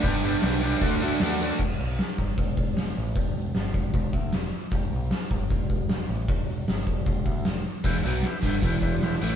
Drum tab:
CC |xxxxxxxx|x-------|--------|--------|
HH |--------|-ooooooo|oooooooo|oooooooo|
SD |--o---o-|--o---o-|--o---oo|--o---o-|
BD |o---o---|o--ooo--|o--ooo--|o--ooo--|

CC |--------|--------|
HH |oooooooo|oooooooo|
SD |--o---o-|--o---o-|
BD |o--ooo--|o--ooo--|